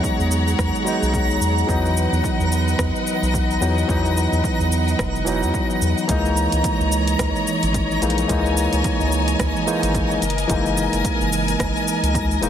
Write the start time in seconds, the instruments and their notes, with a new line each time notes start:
Already playing: string section E3 G#4 C#5 F#5, tine electric piano F#3 G#3 B3 D#4, synth texture A#5
0.04 kick, shaker
0.19 analog synth bass E2, shaker
0.32 shaker
0.48 shaker
0.59 analog synth bass E2, kick, cross-stick, shaker
0.75 shaker
0.85 tine electric piano F#3 G#3 B3 D#4, shaker
1.02 analog synth bass B1, shaker
1.14 kick, shaker
1.30 shaker
1.41 analog synth bass E2, shaker
1.58 shaker
1.67 analog synth bass E2, tine electric piano E3 F#3 B3 D#4, string section B4 D#5, kick, shaker
1.86 shaker
1.97 shaker
2.12 analog synth bass E2, shaker
2.24 kick, shaker
2.39 analog synth bass E2, shaker
2.52 shaker
2.68 shaker
2.79 analog synth bass E2, kick, cross-stick, shaker
2.96 shaker
3.07 shaker
3.22 analog synth bass B1, shaker
3.34 kick, shaker
3.51 shaker
3.61 analog synth bass E2, tine electric piano E3 F#3 B3 D#4, shaker
3.78 shaker
3.87 analog synth bass E2, tine electric piano E3 F#3 B3 D#4, kick, shaker
4.05 shaker
4.17 shaker
4.32 analog synth bass E2, shaker
4.44 kick, shaker
4.59 analog synth bass E2, shaker
4.72 shaker
4.88 shaker
4.99 analog synth bass E1, kick, cross-stick, shaker
5.16 shaker
5.25 tine electric piano E3 F#3 B3 D#4, shaker
5.42 analog synth bass E2, shaker
5.54 kick, shaker
5.70 shaker
5.81 analog synth bass E2, shaker
5.98 shaker
6.08 analog synth bass C#2, tine electric piano E3 G#3 A#3 D#4, string section E3 C#5 D#5 A#5, synth texture A#5, kick, closed hi-hat, shaker
6.25 shaker
6.37 shaker
6.52 analog synth bass C#2, closed hi-hat, shaker
6.64 kick, closed hi-hat, shaker
6.80 analog synth bass C#2, shaker
6.92 shaker
7.07 closed hi-hat, shaker
7.19 analog synth bass C#2, kick, cross-stick, closed hi-hat, shaker
7.36 shaker
7.47 shaker
7.63 analog synth bass G#1, closed hi-hat, shaker
7.74 kick, closed hi-hat, shaker
7.91 shaker
8.01 analog synth bass A#1, tine electric piano E3 G#3 A#3 D#4, closed hi-hat, shaker
8.10 closed hi-hat
8.18 closed hi-hat, shaker
8.28 analog synth bass C#2, tine electric piano E3 G#3 A#3 D#4, string section G#5, kick, closed hi-hat, shaker
8.46 shaker
8.57 shaker
8.73 analog synth bass C#2, closed hi-hat, shaker
8.84 kick, closed hi-hat, shaker
9.00 analog synth bass C#2, shaker
9.12 shaker
9.28 closed hi-hat, shaker
9.39 analog synth bass C#2, kick, cross-stick, closed hi-hat, shaker
9.56 shaker
9.66 tine electric piano E3 G#3 A#3 D#4, shaker
9.83 analog synth bass G#1, closed hi-hat, shaker
9.94 kick, closed hi-hat, shaker
10.11 shaker
10.22 analog synth bass F#1, string section A#4 G#5, closed hi-hat, shaker
10.30 closed hi-hat
10.38 closed hi-hat, shaker
10.48 analog synth bass F#1, tine electric piano E3 G#3 A#3 D#4, kick, closed hi-hat, shaker
10.66 shaker
10.77 shaker
10.93 analog synth bass F#1, closed hi-hat, shaker
11.04 kick, closed hi-hat, shaker
11.20 analog synth bass F#1, shaker
11.33 shaker
11.48 closed hi-hat, shaker
11.60 analog synth bass F#1, kick, cross-stick, closed hi-hat, shaker
11.77 shaker
11.88 shaker
12.03 analog synth bass C#2, closed hi-hat, shaker
12.15 kick, closed hi-hat, shaker
12.31 shaker
12.41 analog synth bass E1, tine electric piano E3 G#3 A#3 D#4, closed hi-hat, shaker